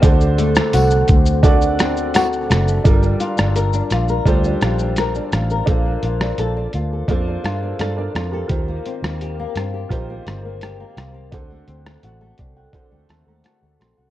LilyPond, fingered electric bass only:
\new Staff \with { instrumentName = "Fingered electric bass" } { \clef bass \time 4/4 \key g \minor \tempo 4 = 85 d,4 c,8 d,2 fis,,8 | g,,8 r16 g,,8. bes,,8 d,8 bes,,4 a,,8 | bes,,8 bes,,8 bes,,8 d,8 f,8 g,8 g,8 f,8 | ees,8 r16 ees,8. g,8 bes,,8 g,,4 c,8 |
d,8 d,8 a,,8 c,8 r16 d,16 ees,16 ees,16 r16 d,16 bes,,16 c,16 | }